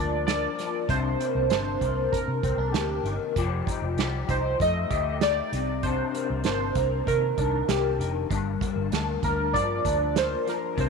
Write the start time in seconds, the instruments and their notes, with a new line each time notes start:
Already playing: fingered electric bass D2, clean electric guitar G2 F3 A#3 D4, synth keys D5
0.27 clean electric guitar A#3, synth keys D5, snare, closed hi-hat
0.59 clean electric guitar F3, snare, closed hi-hat
0.89 fingered electric bass C2, clean electric guitar C3 D4, synth keys C5, kick, closed hi-hat
1.20 clean electric guitar A#3, closed hi-hat
1.35 fingered electric bass C2
1.50 fingered electric bass G1, clean electric guitar D4, synth keys C5, snare, closed hi-hat
1.81 fingered electric bass C2, clean electric guitar A#3, kick, closed hi-hat
2.12 synth keys A#4, kick, closed hi-hat
2.28 fingered electric bass C3
2.43 fingered electric bass C2, clean electric guitar C4, kick, closed hi-hat
2.57 fingered electric bass C2, clean electric guitar D4
2.68 synth keys A4
2.72 fingered electric bass D2, clean electric guitar A#3, synth keys G4, snare, closed hi-hat
3.03 fingered electric bass G1, clean electric guitar D#3, closed hi-hat
3.36 fingered electric bass F1, clean electric guitar F3 G4, kick, closed hi-hat
3.67 clean electric guitar D#4, kick, closed hi-hat
3.82 fingered electric bass F1
3.97 fingered electric bass C2, clean electric guitar G4, snare, closed hi-hat
4.28 fingered electric bass C2, clean electric guitar D#4, synth keys C5, kick, closed hi-hat
4.60 fingered electric bass F2, clean electric guitar A3, synth keys D#5, kick, closed hi-hat
4.90 fingered electric bass D2, clean electric guitar G4, kick, closed hi-hat
5.21 clean electric guitar D#4, synth keys D5, snare, closed hi-hat
5.52 fingered electric bass C2, clean electric guitar C3, closed hi-hat
5.83 clean electric guitar C3 D4, synth keys C5, kick, closed hi-hat
6.14 clean electric guitar A#3, closed hi-hat
6.30 fingered electric bass C2
6.44 fingered electric bass G1, clean electric guitar D4, synth keys C5, snare, closed hi-hat
6.75 fingered electric bass C2, clean electric guitar A#3, kick, closed hi-hat
7.07 fingered electric bass C3, clean electric guitar D#3, synth keys A#4, kick, closed hi-hat
7.38 fingered electric bass C2, clean electric guitar D4, kick, closed hi-hat
7.68 fingered electric bass C2, clean electric guitar A#3, synth keys G4, snare, closed hi-hat
7.99 fingered electric bass F1, clean electric guitar D#3, closed hi-hat
8.30 fingered electric bass G1, clean electric guitar G2 D4, kick, closed hi-hat
8.61 clean electric guitar A#3, kick, closed hi-hat
8.76 fingered electric bass G1
8.92 fingered electric bass D2, clean electric guitar D4, snare, closed hi-hat
9.23 fingered electric bass D2, clean electric guitar A#3, synth keys A#4, kick, closed hi-hat
9.53 fingered electric bass G2, clean electric guitar F3, synth keys D5, kick, closed hi-hat
9.84 fingered electric bass D2, clean electric guitar D4, kick, closed hi-hat
10.15 clean electric guitar A#3, synth keys C5, snare, closed hi-hat
10.46 clean electric guitar F3, synth keys A#4, snare, closed hi-hat
10.77 fingered electric bass C2, clean electric guitar C3 D4, synth keys C5, kick, closed hi-hat